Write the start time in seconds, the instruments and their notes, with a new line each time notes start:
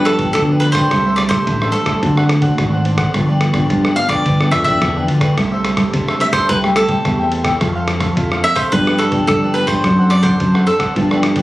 Already playing: fingered electric bass G2, nylon-string guitar G2 F3 B3 D4
0.05 cavaquinho A4, muted cavaquinho stroke, cross-stick, ride
0.19 cavaquinho G4 B4 D5, kick, ride
0.33 fingered electric bass D2, nylon-string guitar D3 F3 B3 D4, cavaquinho A4, kick, cross-stick, ride
0.50 cavaquinho G4 B4 D5
0.60 cavaquinho F4 G4 B4, ride
0.64 cavaquinho D5
0.72 cavaquinho B4 C5 D5, kick, cross-stick, ride
0.77 cavaquinho G4
0.91 fingered electric bass C2, nylon-string guitar C3 G3 A3 E4, cavaquinho E4 A4 C5 E5, kick, cross-stick, ride
1.06 cavaquinho A4 C5 E5
1.16 cavaquinho D5, cross-stick, ride
1.29 nylon-string guitar G3 A3 E4, cavaquinho C5 E5, kick, cross-stick, ride
1.33 cavaquinho A4
1.47 fingered electric bass A1, nylon-string guitar G2, cavaquinho E4 A4 C5 E5, kick, ride
1.62 cavaquinho A4 C5 E5, cross-stick
1.72 nylon-string guitar G3 A3 E4, cavaquinho A4, muted cavaquinho stroke, ride
1.86 cavaquinho A4 C5 E5, kick, cross-stick, ride
2.03 fingered electric bass D2, nylon-string guitar D3 A3 C4 F#4, cavaquinho D4 C5 D5 F#5, kick, ride
2.17 nylon-string guitar A3 C4 F#4, cavaquinho C5 D5 F#5, cross-stick
2.29 muted cavaquinho stroke, cross-stick, ride
2.42 nylon-string guitar A3 C4 F#4, cavaquinho C5 D5 F#5, kick, ride
2.58 fingered electric bass G#1, nylon-string guitar A3 C4 F#4, kick, cross-stick, ride
2.73 cavaquinho C5 D5 F#5
2.85 cavaquinho D4 C5 D5 F#5, ride
2.97 cavaquinho C5 D5 F#5, kick, cross-stick, ride
3.14 fingered electric bass G1, nylon-string guitar G2 F3 B3 D4, cavaquinho F4 G4 B4 D5, kick, cross-stick, ride
3.28 cavaquinho G4 B4 D5
3.41 cross-stick, ride
3.53 nylon-string guitar F3 B3 D4, cavaquinho G4 B4 D5, kick, cross-stick, ride
3.69 fingered electric bass G2, nylon-string guitar D3, cavaquinho F4 G4 B4 D5, kick, ride
3.84 cavaquinho G4 B4 D5, cross-stick
3.96 nylon-string guitar F3 B3 D4, cavaquinho F5, muted cavaquinho stroke, ride
4.09 cavaquinho G4 B4 D5, kick, cross-stick, ride
4.25 fingered electric bass G1, nylon-string guitar G2, cavaquinho F4 G4 B4 D5, kick, ride
4.40 nylon-string guitar F3 B3 D4, cavaquinho G4 B4 D5, cross-stick
4.51 fingered electric bass F2, cavaquinho E5, muted cavaquinho stroke, cross-stick, ride
4.64 nylon-string guitar F3 B3 D4, cavaquinho G4 B4 D5 E5, kick, ride
4.82 fingered electric bass E2, nylon-string guitar D3 F3 B3 D4, kick, cross-stick, ride
4.96 cavaquinho G4 B4 D5
5.07 fingered electric bass D2, cavaquinho F4 G4 B4 D5, ride
5.20 cavaquinho G4 B4 D5, kick, cross-stick, ride
5.37 fingered electric bass C2, nylon-string guitar C3 G3 A3 E4, cavaquinho E4 A4 C5 E5, kick, cross-stick, ride
5.52 cavaquinho A4 C5 E5
5.65 cross-stick, ride
5.76 nylon-string guitar G3 A3 E4, cavaquinho A4 C5 E5, kick, cross-stick, ride
5.93 nylon-string guitar G2, fingered electric bass C3, cavaquinho E4 A4 C5 E5, kick, ride
6.07 cavaquinho A4 C5 E5, cross-stick
6.20 nylon-string guitar G3 A3 E4, cavaquinho E5, muted cavaquinho stroke, ride
6.32 cavaquinho A4 C5 E5, kick, cross-stick, ride
6.49 fingered electric bass C2, nylon-string guitar C3 G3 A3 E4, cavaquinho A4 B4 C5 E5 G5, kick, ride
6.64 nylon-string guitar G3 A3 E4, cavaquinho C5 E5 G5, cross-stick
6.76 cavaquinho A4, muted cavaquinho stroke, cross-stick, ride
6.88 nylon-string guitar G3 A3 E4, cavaquinho C5 E5 G5, kick, ride
7.05 fingered electric bass E2, nylon-string guitar C3 G3 A3 E4, kick, cross-stick, ride
7.19 cavaquinho C5 E5 G5
7.31 cavaquinho A4 C5 E5 G5, ride
7.44 cavaquinho C5 E5 G5, kick, cross-stick, ride
7.60 fingered electric bass F2, nylon-string guitar F3 C4 E4 A4, cavaquinho E4 A4 C5 F5, kick, cross-stick, ride
7.75 cavaquinho A4 C5 F5
7.88 cross-stick, ride
8.00 nylon-string guitar C4 E4 A4, cavaquinho A4 C5 F5, kick, cross-stick, ride
8.16 fingered electric bass F2, nylon-string guitar C3, cavaquinho E4 A4 C5 F5, kick, ride
8.32 cavaquinho A4 C5 F5, cross-stick
8.44 nylon-string guitar C4 E4 A4, cavaquinho E5, ride
8.55 cavaquinho A4 C5 F5, kick, cross-stick, ride
8.72 fingered electric bass G2, nylon-string guitar G2 F3 B3 D4, cavaquinho F4 G4 B4 D5, kick, ride
8.87 cavaquinho G4 B4 D5, cross-stick
8.98 cavaquinho A4, cross-stick, ride
9.12 nylon-string guitar F3 B3 D4, cavaquinho G4 B4 D5, kick, ride
9.27 fingered electric bass G2, nylon-string guitar D3, cavaquinho A4, kick, cross-stick, ride
9.43 cavaquinho G4 B4 D5
9.54 nylon-string guitar F3 B3 D4, cavaquinho F4 G4 B4 D5, ride
9.67 cavaquinho G4 B4 C5 D5, kick, cross-stick, ride
9.84 fingered electric bass F#2, nylon-string guitar F#3 C4 D4 A4, cavaquinho D4 A4 C5 F#5, kick, cross-stick, ride
9.99 cavaquinho A4 C5 F#5
10.10 cavaquinho D5, cross-stick, ride
10.23 nylon-string guitar C4 D4 A4, cavaquinho A4 C5 F#5, kick, cross-stick, ride
10.40 fingered electric bass F#2, nylon-string guitar F#3, cavaquinho D4 A4 C5 F#5, kick, ride
10.54 cavaquinho A4 C5 F#5, cross-stick
10.66 nylon-string guitar C4 D4 A4, cavaquinho A4, muted cavaquinho stroke, ride
10.79 cavaquinho A4 C5 F#5, kick, cross-stick, ride
10.96 nylon-string guitar G2 F3 B3 D4, fingered electric bass G2, cavaquinho F4 G4 B4 D5, kick, ride
11.11 nylon-string guitar F3 B3 D4, cavaquinho G4 B4 D5, cross-stick
11.23 muted cavaquinho stroke, cross-stick, ride
11.35 nylon-string guitar F3 B3 D4, cavaquinho G4 B4 D5, kick, ride